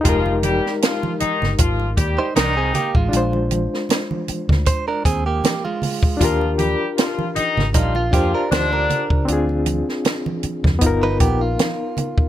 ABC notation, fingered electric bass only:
X:1
M:4/4
L:1/16
Q:"Swing 16ths" 1/4=78
K:Fdor
V:1 name="Fingered electric bass" clef=bass
F,,,3 z4 G,,, A,,,2 E,, z C,,2 z =A,,, | B,,,3 z4 D,, z2 E,,2 z4 | E,,3 z4 A,,, B,,,2 F,, z D,,2 z _D,, | D,,3 z4 F,, G,,,2 ^A,,,2 z4 |]